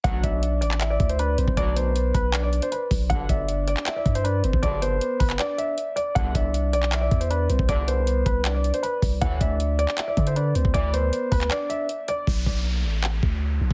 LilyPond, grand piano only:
\new Staff \with { instrumentName = "Grand piano" } { \time 4/4 \key b \phrygian \tempo 4 = 157 fis''8 e''4 d''8. d''8 c''16 b'8 r8 | d''8 c''4 b'8. d''8 c''16 b'8 r8 | fis''8 e''4 d''8. d''8 c''16 b'8 r8 | d''8 c''4 b'8 d''8 e''4 d''8 |
fis''8 e''4 d''8. d''8 c''16 b'8 r8 | d''8 c''4 b'8. d''8 c''16 b'8 r8 | fis''8 e''4 d''8. d''8 c''16 b'8 r8 | d''8 c''4 b'8 d''8 e''4 d''8 |
r1 | }